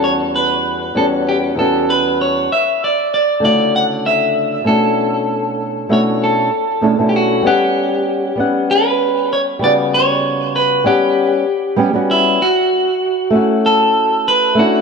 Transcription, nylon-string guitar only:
X:1
M:4/4
L:1/16
Q:1/4=97
K:Edor
V:1 name="Nylon-string guitar"
[E,,G,B,CF]6 [E,,G,B,CF]4 [E,,G,B,CF]6 | z6 [C,D,A,EF]8 [B,,A,CDEF]2- | [B,,A,CDEF]6 [B,,A,CDEF]4 z2 [B,,A,CDEA] [B,,A,CDEF]3 | [G,B,Cf]6 [G,B,Cf]8 [C,G,B,F]2- |
[C,G,B,F]6 [G,B,Cf]4 z2 [G,B,CG] [G,B,CF]3 | z6 [A,CEF]8 [A,CDE]2 |]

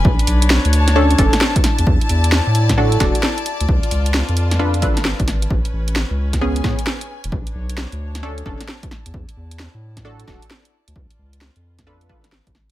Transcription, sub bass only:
X:1
M:4/4
L:1/16
Q:"Swing 16ths" 1/4=132
K:Emix
V:1 name="Sub bass" clef=bass
B,,, z B,,,3 D,,4- D,, F,,, z4 E,, | E,, z E,,3 A,,4- A,, E,,, z4 D,, | C,, z C,,3 ^E,,4- E,, G,,,3 G,,,3 | A,,, z A,,,3 C,,4- C,, A,, z4 E,,, |
B,,, z B,,,3 D,,4- D,, F,,, z4 E,, | E,, z E,,3 A,,4- A,, E,,, z4 D,, | C,, z C,,3 ^E,,4- E,, G,,,3 G,,,3 |]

